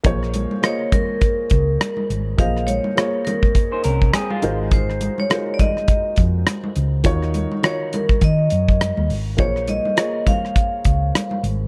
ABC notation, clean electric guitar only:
X:1
M:4/4
L:1/16
Q:"Swing 16ths" 1/4=103
K:Bbm
V:1 name="Clean electric guitar"
z16 | z8 z [Ec] [DB]2 [CA] [A,F]2 z | z16 | z16 |
z16 |]